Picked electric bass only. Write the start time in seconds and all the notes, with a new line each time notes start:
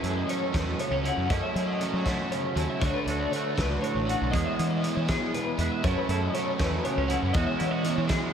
0.03 F#2
0.54 E2
0.90 C#2
1.17 F#2
1.30 F#2
1.55 F#3
1.93 F#3
2.56 D#2
2.82 D2
3.06 D2
3.58 C#2
3.95 A1
4.21 B1
4.34 E2
4.59 E3
4.97 E3
5.58 E2
5.84 F#2
6.08 F#2
6.60 E2
6.97 C#2
7.22 F#2
7.34 E2
7.60 E3
7.97 E3